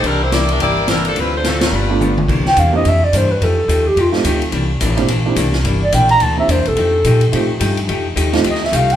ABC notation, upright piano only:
X:1
M:4/4
L:1/8
Q:"Swing" 1/4=214
K:Cmix
V:1 name="Upright piano"
z8 | z4 z [F,A,=B,D]3 | z3 [B,CDEG] z4 | z4 z [A,C_EFG]3 |
z3 [B,CDEG] z [B,CDEG] z2 | z4 z [B,CDEG]3 | z4 [A,C_EFG] z3 | z3 [A,C_EFG] z4 |]